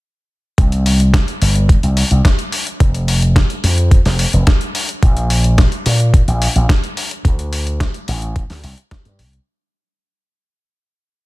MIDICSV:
0, 0, Header, 1, 3, 480
1, 0, Start_track
1, 0, Tempo, 555556
1, 501, Time_signature, 4, 2, 24, 8
1, 9723, End_track
2, 0, Start_track
2, 0, Title_t, "Slap bass"
2, 0, Program_c, 0, 36
2, 502, Note_on_c, 0, 36, 98
2, 1040, Note_off_c, 0, 36, 0
2, 1223, Note_on_c, 0, 31, 82
2, 1521, Note_off_c, 0, 31, 0
2, 1583, Note_on_c, 0, 36, 86
2, 1744, Note_off_c, 0, 36, 0
2, 1823, Note_on_c, 0, 36, 95
2, 1903, Note_off_c, 0, 36, 0
2, 2422, Note_on_c, 0, 29, 98
2, 2960, Note_off_c, 0, 29, 0
2, 3142, Note_on_c, 0, 41, 82
2, 3440, Note_off_c, 0, 41, 0
2, 3504, Note_on_c, 0, 29, 84
2, 3665, Note_off_c, 0, 29, 0
2, 3744, Note_on_c, 0, 29, 95
2, 3824, Note_off_c, 0, 29, 0
2, 4342, Note_on_c, 0, 34, 98
2, 4880, Note_off_c, 0, 34, 0
2, 5064, Note_on_c, 0, 46, 85
2, 5361, Note_off_c, 0, 46, 0
2, 5425, Note_on_c, 0, 34, 88
2, 5585, Note_off_c, 0, 34, 0
2, 5665, Note_on_c, 0, 34, 96
2, 5744, Note_off_c, 0, 34, 0
2, 6262, Note_on_c, 0, 38, 97
2, 6800, Note_off_c, 0, 38, 0
2, 6984, Note_on_c, 0, 33, 81
2, 7281, Note_off_c, 0, 33, 0
2, 7345, Note_on_c, 0, 38, 88
2, 7458, Note_off_c, 0, 38, 0
2, 7463, Note_on_c, 0, 36, 95
2, 7544, Note_off_c, 0, 36, 0
2, 7824, Note_on_c, 0, 43, 85
2, 7940, Note_on_c, 0, 36, 79
2, 7953, Note_off_c, 0, 43, 0
2, 8104, Note_off_c, 0, 36, 0
2, 9723, End_track
3, 0, Start_track
3, 0, Title_t, "Drums"
3, 501, Note_on_c, 9, 36, 121
3, 503, Note_on_c, 9, 42, 68
3, 588, Note_off_c, 9, 36, 0
3, 589, Note_off_c, 9, 42, 0
3, 624, Note_on_c, 9, 42, 41
3, 710, Note_off_c, 9, 42, 0
3, 743, Note_on_c, 9, 46, 102
3, 829, Note_off_c, 9, 46, 0
3, 863, Note_on_c, 9, 42, 40
3, 950, Note_off_c, 9, 42, 0
3, 982, Note_on_c, 9, 36, 106
3, 983, Note_on_c, 9, 42, 66
3, 986, Note_on_c, 9, 38, 121
3, 1068, Note_off_c, 9, 36, 0
3, 1070, Note_off_c, 9, 42, 0
3, 1072, Note_off_c, 9, 38, 0
3, 1106, Note_on_c, 9, 42, 41
3, 1192, Note_off_c, 9, 42, 0
3, 1223, Note_on_c, 9, 46, 105
3, 1310, Note_off_c, 9, 46, 0
3, 1343, Note_on_c, 9, 42, 40
3, 1429, Note_off_c, 9, 42, 0
3, 1462, Note_on_c, 9, 36, 123
3, 1463, Note_on_c, 9, 42, 69
3, 1548, Note_off_c, 9, 36, 0
3, 1550, Note_off_c, 9, 42, 0
3, 1584, Note_on_c, 9, 42, 42
3, 1670, Note_off_c, 9, 42, 0
3, 1701, Note_on_c, 9, 46, 104
3, 1787, Note_off_c, 9, 46, 0
3, 1822, Note_on_c, 9, 42, 42
3, 1909, Note_off_c, 9, 42, 0
3, 1942, Note_on_c, 9, 36, 105
3, 1942, Note_on_c, 9, 42, 67
3, 1945, Note_on_c, 9, 38, 124
3, 2028, Note_off_c, 9, 36, 0
3, 2029, Note_off_c, 9, 42, 0
3, 2031, Note_off_c, 9, 38, 0
3, 2062, Note_on_c, 9, 42, 39
3, 2149, Note_off_c, 9, 42, 0
3, 2181, Note_on_c, 9, 46, 102
3, 2267, Note_off_c, 9, 46, 0
3, 2304, Note_on_c, 9, 42, 40
3, 2391, Note_off_c, 9, 42, 0
3, 2422, Note_on_c, 9, 36, 124
3, 2422, Note_on_c, 9, 42, 68
3, 2508, Note_off_c, 9, 36, 0
3, 2508, Note_off_c, 9, 42, 0
3, 2544, Note_on_c, 9, 42, 40
3, 2631, Note_off_c, 9, 42, 0
3, 2662, Note_on_c, 9, 46, 110
3, 2749, Note_off_c, 9, 46, 0
3, 2785, Note_on_c, 9, 42, 40
3, 2871, Note_off_c, 9, 42, 0
3, 2902, Note_on_c, 9, 36, 108
3, 2903, Note_on_c, 9, 42, 64
3, 2906, Note_on_c, 9, 38, 123
3, 2988, Note_off_c, 9, 36, 0
3, 2990, Note_off_c, 9, 42, 0
3, 2992, Note_off_c, 9, 38, 0
3, 3024, Note_on_c, 9, 42, 41
3, 3110, Note_off_c, 9, 42, 0
3, 3143, Note_on_c, 9, 46, 109
3, 3229, Note_off_c, 9, 46, 0
3, 3264, Note_on_c, 9, 42, 40
3, 3350, Note_off_c, 9, 42, 0
3, 3382, Note_on_c, 9, 36, 125
3, 3382, Note_on_c, 9, 42, 67
3, 3468, Note_off_c, 9, 36, 0
3, 3468, Note_off_c, 9, 42, 0
3, 3503, Note_on_c, 9, 46, 65
3, 3506, Note_on_c, 9, 38, 40
3, 3590, Note_off_c, 9, 46, 0
3, 3592, Note_off_c, 9, 38, 0
3, 3621, Note_on_c, 9, 46, 114
3, 3707, Note_off_c, 9, 46, 0
3, 3743, Note_on_c, 9, 42, 41
3, 3829, Note_off_c, 9, 42, 0
3, 3861, Note_on_c, 9, 42, 66
3, 3862, Note_on_c, 9, 36, 110
3, 3864, Note_on_c, 9, 38, 123
3, 3947, Note_off_c, 9, 42, 0
3, 3949, Note_off_c, 9, 36, 0
3, 3950, Note_off_c, 9, 38, 0
3, 3982, Note_on_c, 9, 42, 40
3, 4069, Note_off_c, 9, 42, 0
3, 4103, Note_on_c, 9, 46, 106
3, 4189, Note_off_c, 9, 46, 0
3, 4224, Note_on_c, 9, 42, 40
3, 4310, Note_off_c, 9, 42, 0
3, 4342, Note_on_c, 9, 36, 125
3, 4342, Note_on_c, 9, 42, 64
3, 4429, Note_off_c, 9, 36, 0
3, 4429, Note_off_c, 9, 42, 0
3, 4463, Note_on_c, 9, 42, 40
3, 4550, Note_off_c, 9, 42, 0
3, 4580, Note_on_c, 9, 46, 112
3, 4667, Note_off_c, 9, 46, 0
3, 4703, Note_on_c, 9, 42, 38
3, 4789, Note_off_c, 9, 42, 0
3, 4821, Note_on_c, 9, 42, 63
3, 4822, Note_on_c, 9, 36, 114
3, 4824, Note_on_c, 9, 38, 123
3, 4908, Note_off_c, 9, 42, 0
3, 4909, Note_off_c, 9, 36, 0
3, 4910, Note_off_c, 9, 38, 0
3, 4942, Note_on_c, 9, 42, 39
3, 5028, Note_off_c, 9, 42, 0
3, 5061, Note_on_c, 9, 46, 115
3, 5148, Note_off_c, 9, 46, 0
3, 5183, Note_on_c, 9, 42, 38
3, 5270, Note_off_c, 9, 42, 0
3, 5302, Note_on_c, 9, 36, 127
3, 5303, Note_on_c, 9, 42, 63
3, 5388, Note_off_c, 9, 36, 0
3, 5390, Note_off_c, 9, 42, 0
3, 5425, Note_on_c, 9, 42, 40
3, 5512, Note_off_c, 9, 42, 0
3, 5544, Note_on_c, 9, 46, 112
3, 5631, Note_off_c, 9, 46, 0
3, 5665, Note_on_c, 9, 42, 39
3, 5752, Note_off_c, 9, 42, 0
3, 5782, Note_on_c, 9, 36, 116
3, 5784, Note_on_c, 9, 42, 64
3, 5787, Note_on_c, 9, 38, 122
3, 5868, Note_off_c, 9, 36, 0
3, 5870, Note_off_c, 9, 42, 0
3, 5873, Note_off_c, 9, 38, 0
3, 5906, Note_on_c, 9, 42, 37
3, 5992, Note_off_c, 9, 42, 0
3, 6023, Note_on_c, 9, 46, 111
3, 6109, Note_off_c, 9, 46, 0
3, 6145, Note_on_c, 9, 42, 39
3, 6232, Note_off_c, 9, 42, 0
3, 6262, Note_on_c, 9, 36, 120
3, 6264, Note_on_c, 9, 42, 65
3, 6348, Note_off_c, 9, 36, 0
3, 6351, Note_off_c, 9, 42, 0
3, 6384, Note_on_c, 9, 42, 39
3, 6471, Note_off_c, 9, 42, 0
3, 6502, Note_on_c, 9, 46, 112
3, 6589, Note_off_c, 9, 46, 0
3, 6625, Note_on_c, 9, 42, 38
3, 6711, Note_off_c, 9, 42, 0
3, 6741, Note_on_c, 9, 36, 107
3, 6743, Note_on_c, 9, 42, 63
3, 6746, Note_on_c, 9, 38, 118
3, 6828, Note_off_c, 9, 36, 0
3, 6829, Note_off_c, 9, 42, 0
3, 6832, Note_off_c, 9, 38, 0
3, 6863, Note_on_c, 9, 42, 38
3, 6949, Note_off_c, 9, 42, 0
3, 6981, Note_on_c, 9, 46, 110
3, 7067, Note_off_c, 9, 46, 0
3, 7103, Note_on_c, 9, 42, 37
3, 7189, Note_off_c, 9, 42, 0
3, 7221, Note_on_c, 9, 36, 127
3, 7221, Note_on_c, 9, 42, 63
3, 7308, Note_off_c, 9, 36, 0
3, 7308, Note_off_c, 9, 42, 0
3, 7343, Note_on_c, 9, 46, 66
3, 7345, Note_on_c, 9, 38, 37
3, 7429, Note_off_c, 9, 46, 0
3, 7432, Note_off_c, 9, 38, 0
3, 7461, Note_on_c, 9, 46, 112
3, 7548, Note_off_c, 9, 46, 0
3, 7582, Note_on_c, 9, 42, 38
3, 7669, Note_off_c, 9, 42, 0
3, 7700, Note_on_c, 9, 42, 61
3, 7701, Note_on_c, 9, 36, 114
3, 7703, Note_on_c, 9, 38, 115
3, 7787, Note_off_c, 9, 36, 0
3, 7787, Note_off_c, 9, 42, 0
3, 7789, Note_off_c, 9, 38, 0
3, 7822, Note_on_c, 9, 42, 38
3, 7908, Note_off_c, 9, 42, 0
3, 7940, Note_on_c, 9, 46, 112
3, 8027, Note_off_c, 9, 46, 0
3, 8063, Note_on_c, 9, 42, 38
3, 8149, Note_off_c, 9, 42, 0
3, 9723, End_track
0, 0, End_of_file